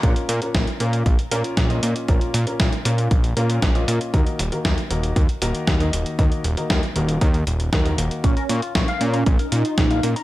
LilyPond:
<<
  \new Staff \with { instrumentName = "Clean electric guitar" } { \time 4/4 \key bes \phrygian \tempo 4 = 117 r1 | r1 | r1 | r1 |
des'16 bes'16 des'16 f'16 des'16 f''16 des'16 bes''16 des'16 bes'16 des'16 f'16 des'16 f''16 des'16 bes''16 | }
  \new Staff \with { instrumentName = "Grand piano" } { \time 4/4 \key bes \phrygian <bes, bes des' f' bes'>8 r16 <bes, bes des' f' bes'>8 r16 <bes, bes des' f' bes'>8 r8 <bes, bes des' f' bes'>8. <bes, bes des' f' ees''>8. | <bes, bes des' f' bes'>8 r16 <bes, bes des' f' bes'>8 r16 <bes, bes des' f' bes'>8 r8 <bes, bes des' f' bes'>8. <bes, bes des' f' ees''>8. | <ees bes ees' ges' bes'>8 r16 <ees bes ees' ges' bes'>8 r16 <ees bes ees' ges' bes'>8 r8 <ees bes ees' ges' bes'>8. <ees bes ees' ges' ees''>8. | <ees bes ees' ges' bes'>8 r16 <ees bes ees' ges' bes'>8 r16 <ees bes ees' ges' bes'>8 r4 <ees bes ees' ges' bes'>16 <ees bes ees' ges' bes'>8. |
r1 | }
  \new Staff \with { instrumentName = "Analog polysynth" } { \time 4/4 \key bes \phrygian r1 | r1 | r1 | r1 |
des'8 r4 des'8 r16 ees'4. r16 | }
  \new Staff \with { instrumentName = "Analog synth bass" } { \clef bass \time 4/4 \key bes \phrygian bes,,8 bes,8 bes,,8 bes,8 bes,,8 bes,8 bes,,8 bes,8 | bes,,8 bes,8 bes,,8 bes,8 bes,,8 bes,8 bes,,8 bes,8 | ees,8 ees,,8 ees,8 ees,,8 ees,8 ees,,8 ees,8 ees,,8 | ees,8 ees,,8 ees,8 ees,,8 ees,8 ees,,8 ees,8 ees,,8 |
bes,,8 bes,8 bes,,8 bes,8 bes,,8 bes,8 bes,,8 bes,8 | }
  \new DrumStaff \with { instrumentName = "Drums" } \drummode { \time 4/4 <hh bd>16 hh16 hh16 hh16 <hh bd sn>16 hh16 hh16 hh16 <hh bd>16 hh16 hh16 hh16 <hh bd sn>16 hh16 hh16 hh16 | <hh bd>16 hh16 hh16 hh16 <hh bd sn>16 hh16 hh16 hh16 <hh bd>16 hh16 hh16 hh16 <hh bd sn>16 hh16 hh16 hh16 | <hh bd>16 hh16 hh16 hh16 <hh bd sn>16 hh16 hh16 hh16 <hh bd>16 hh16 hh16 hh16 <hh bd sn>16 hh16 hh16 hh16 | <hh bd>16 hh16 hh16 hh16 <hh bd sn>16 hh16 hh16 hh16 <hh bd>16 hh16 hh16 hh16 <hh bd sn>16 hh16 hh16 hh16 |
<hh bd>16 hh16 hh16 hh16 <hh bd sn>16 hh16 hh16 hh16 <hh bd>16 hh16 hh16 hh16 <hh bd sn>16 hh16 hh16 hh16 | }
>>